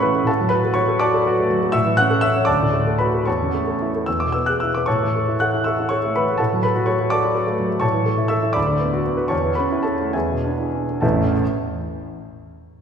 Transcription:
0.00 0.23 A2 medium
0.00 0.03 E3 soft
0.00 0.23 E3 soft
0.00 0.11 A3 soft
0.00 0.31 C#4 medium
0.00 0.28 A4 soft
0.00 0.26 B4 medium
0.00 0.30 C#5 medium
0.00 0.30 E5 medium
0.00 0.28 F#5 medium
0.00 0.27 A5 medium
0.00 0.26 B5 medium
0.00 0.31 C#6 medium
0.00 0.31 E6 medium
0.00 0.31 F#6 medium
0.15 0.28 A3 soft
0.24 1.68 A2 medium
0.24 0.52 A5 medium
0.28 0.51 A4 medium
0.28 0.51 F#5 medium
0.41 0.60 F#3 soft
0.49 0.71 F#4 medium
0.49 0.74 B4 medium
0.49 0.75 B5 medium
0.65 0.84 A4 soft
0.74 0.96 F#4 medium
0.74 0.99 C#5 medium
0.74 1.00 C#6 medium
0.88 1.08 A4 medium
0.99 1.21 F#4 medium
0.99 1.69 D5 medium
0.99 1.69 A5 medium
0.99 1.73 D6 medium
1.14 1.33 A4 medium
1.27 1.46 F#4 medium
1.40 1.58 A3 soft
1.50 1.69 F#3 soft
1.63 1.74 A3 soft
1.72 2.46 A2 medium
1.72 1.96 E5 medium
1.72 1.96 C#6 medium
1.72 1.97 E6 medium
1.86 2.05 E3 soft
1.97 2.18 C#4 medium
1.97 2.21 F#5 medium
1.97 2.22 F#6 loud
2.11 2.30 A4 medium
2.21 2.43 C#4 medium
2.21 2.46 E5 medium
2.21 2.47 E6 loud
2.36 2.48 C#5 medium
2.45 3.25 D2 medium
2.45 2.96 D5 medium
2.45 2.96 A5 medium
2.45 2.99 D6 medium
2.61 2.82 A2 soft
2.73 2.95 A3 medium
2.87 3.08 A4 soft
2.98 3.22 F#4 soft
2.98 3.25 B4 soft
2.98 3.26 B5 medium
3.14 3.27 A4 soft
3.25 4.05 E2 medium
3.25 4.03 C#5 soft
3.25 4.03 A5 soft
3.25 4.06 C#6 medium
3.42 3.62 C#3 soft
3.54 3.75 A3 soft
3.67 3.88 A4 soft
3.82 4.02 E4 soft
3.95 4.08 A4 soft
4.06 4.85 E2 soft
4.06 4.20 E6 medium
4.20 4.42 B2 soft
4.20 4.33 D6 medium
4.32 4.55 B3 soft
4.32 4.46 E6 medium
4.46 4.69 G#4 soft
4.46 4.60 F#6 medium
4.60 4.83 E4 soft
4.60 4.73 E6 medium
4.75 4.88 B4 soft
4.75 4.87 D6 medium
4.86 6.36 A2 medium
4.86 5.35 C#5 medium
4.86 5.35 A5 medium
4.86 5.38 C#6 medium
5.03 5.22 E3 soft
5.16 5.35 A4 soft
5.29 5.47 E4 soft
5.40 5.60 A4 soft
5.40 5.64 F#5 medium
5.40 5.64 F#6 medium
5.54 5.73 E4 soft
5.64 5.86 A4 soft
5.64 5.89 E5 soft
5.64 5.87 C#6 soft
5.64 5.89 E6 medium
5.80 5.98 E4 soft
5.89 6.10 A4 soft
5.89 6.13 C#5 medium
5.89 6.14 C#6 medium
6.05 6.23 A3 soft
6.16 6.36 E3 soft
6.16 6.39 B4 medium
6.16 6.40 B5 medium
6.31 6.41 A3 soft
6.38 7.80 A2 soft
6.38 6.62 A4 medium
6.38 6.62 F#5 soft
6.38 6.63 A5 medium
6.53 6.72 F#3 soft
6.63 6.83 A4 soft
6.63 6.86 B4 medium
6.63 6.87 B5 medium
6.76 6.94 F#4 soft
6.86 7.06 A4 soft
6.86 7.09 C#5 medium
6.86 7.10 C#6 medium
7.00 7.18 F#4 soft
7.10 7.31 A4 soft
7.10 7.79 D5 medium
7.10 7.79 A5 medium
7.10 7.83 D6 medium
7.25 7.43 F#4 soft
7.35 7.54 A4 medium
7.47 7.66 A3 soft
7.59 7.78 F#3 soft
7.71 7.83 A3 soft
7.80 8.54 A2 medium
7.80 8.28 C#5 medium
7.80 8.28 A5 medium
7.80 8.31 C#6 medium
7.94 8.14 E3 soft
8.06 8.27 A4 soft
8.18 8.39 E4 soft
8.28 8.51 A4 soft
8.28 8.54 E5 medium
8.28 8.55 E6 medium
8.43 8.56 E4 soft
8.53 9.29 D2 medium
8.53 9.26 D5 medium
8.53 9.26 B5 medium
8.53 9.30 D6 medium
8.68 8.88 D3 soft
8.80 9.01 B3 soft
8.93 9.14 F#4 soft
9.05 9.26 B3 soft
9.17 9.31 B4 soft
9.28 10.11 E2 medium
9.28 9.55 C#5 medium
9.28 9.55 A5 medium
9.28 9.56 C#6 medium
9.44 9.66 E3 soft
9.55 9.80 C#4 soft
9.55 9.83 B4 medium
9.55 9.84 B5 medium
9.72 9.94 E4 soft
9.83 10.08 C#4 soft
9.83 10.11 A4 soft
9.83 10.12 A5 medium
10.00 10.14 A3 soft
10.13 11.00 E2 soft
10.13 10.99 G#4 soft
10.13 10.99 E5 soft
10.13 11.03 G#5 medium
10.30 10.54 B2 soft
10.44 10.68 D4 soft
10.59 10.84 E4 soft
10.75 10.98 D4 soft
10.91 11.04 B3 soft
11.01 11.33 A1 medium
11.01 11.33 E2 medium
11.01 11.33 E3 medium
11.01 11.33 A3 medium
11.01 11.33 C#4 medium
11.01 11.33 E4 medium
11.01 11.32 A5 soft

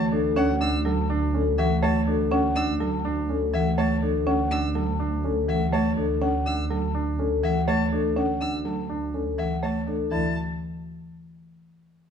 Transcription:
0.00 9.98 D2 medium
0.00 0.19 A3 medium
0.00 0.19 C#5 medium
0.12 0.44 D4 medium
0.12 0.44 A4 medium
0.36 0.68 C#4 medium
0.36 0.68 C#5 medium
0.36 0.68 F#5 medium
0.36 0.54 F#5 medium
0.61 0.92 D4 medium
0.61 0.79 E6 medium
0.85 1.17 F#3 medium
0.85 1.17 A4 medium
0.85 1.17 A5 medium
1.10 1.41 D4 medium
1.34 1.65 C#4 medium
1.34 1.66 A4 medium
1.58 1.90 E3 medium
1.58 1.90 F#4 medium
1.58 1.76 E5 medium
1.58 1.90 F#5 medium
1.83 2.14 A3 medium
1.83 2.14 C#5 medium
1.83 2.01 A5 medium
2.07 2.39 D4 medium
2.07 2.39 A4 medium
2.31 2.63 C#4 medium
2.31 2.63 C#5 medium
2.31 2.63 F#5 medium
2.56 2.87 D4 medium
2.56 2.74 E6 medium
2.80 3.12 F#3 medium
2.80 3.12 A4 medium
2.80 3.12 A5 medium
3.05 3.36 D4 medium
3.29 3.61 C#4 medium
3.29 3.61 A4 medium
3.53 3.85 E3 medium
3.53 3.72 E5 medium
3.53 3.85 F#5 medium
3.78 4.09 A3 medium
3.78 4.09 C#5 medium
3.78 3.96 A5 medium
4.02 4.34 D4 medium
4.02 4.34 A4 medium
4.26 4.58 C#4 medium
4.26 4.58 C#5 medium
4.26 4.58 F#5 medium
4.51 4.83 D4 medium
4.51 4.69 E6 medium
4.75 5.07 F#3 medium
4.75 5.07 A4 medium
4.75 5.07 A5 medium
5.00 5.31 D4 medium
5.24 5.56 C#4 medium
5.24 5.56 A4 medium
5.48 5.80 E3 medium
5.48 5.67 E5 medium
5.48 5.80 F#5 medium
5.73 6.04 A3 medium
5.73 6.04 C#5 medium
5.73 5.91 A5 medium
5.97 6.29 D4 medium
5.97 6.29 A4 medium
6.21 6.53 C#4 medium
6.21 6.53 C#5 medium
6.21 6.53 F#5 medium
6.46 6.78 D4 medium
6.46 6.64 E6 medium
6.70 7.02 F#3 medium
6.70 7.02 A4 medium
6.70 7.02 A5 medium
6.94 7.26 D4 medium
7.19 7.51 C#4 medium
7.19 7.51 A4 medium
7.43 7.75 E3 medium
7.43 7.62 E5 medium
7.43 7.75 F#5 medium
7.68 7.99 A3 medium
7.68 7.99 C#5 medium
7.68 7.86 A5 medium
7.92 8.24 D4 medium
7.92 8.24 A4 medium
8.16 8.48 C#4 medium
8.16 8.48 C#5 medium
8.16 8.48 F#5 medium
8.41 8.73 D4 medium
8.41 8.59 E6 medium
8.65 8.97 F#3 medium
8.65 8.97 A4 medium
8.65 8.97 A5 soft
8.89 9.21 D4 medium
9.14 9.46 C#4 medium
9.14 9.46 A4 medium
9.38 9.70 E3 medium
9.38 9.57 E5 medium
9.38 9.70 F#5 soft
9.63 9.95 A3 medium
9.63 9.95 C#5 medium
9.63 9.81 A5 medium
9.87 10.19 D4 medium
9.87 10.19 A4 medium
10.11 10.34 D2 medium
10.11 10.34 E3 medium
10.11 10.34 E4 medium
10.11 10.34 D5 medium
10.11 10.34 A5 medium

